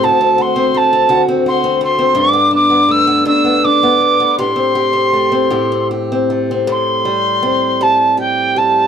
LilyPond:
<<
  \new Staff \with { instrumentName = "Tin whistle" } { \time 3/4 \key a \dorian \tempo 4 = 81 a''8 c'''8 a''8 r8 c'''8 c'''8 | d'''8 d'''8 e'''8 e'''8 d'''4 | c'''2 r4 | c'''4. a''8 g''8 a''8 | }
  \new Staff \with { instrumentName = "Steel-string acoustic guitar" } { \time 3/4 \key a \dorian <d, fis'>16 c'16 fis'16 c'16 a16 c'16 <d, fis'>16 c'16 fis'16 c'16 a16 c'16 | <g, d'>16 b16 d'16 b16 a16 b16 <g, d'>16 b16 d'16 b16 a16 b16 | <a, g'>16 c'16 g'16 c'16 a16 c'16 <a, g'>16 c'16 g'16 c'16 a16 c'16 | a,8 g8 c'8 g8 g'8 g8 | }
>>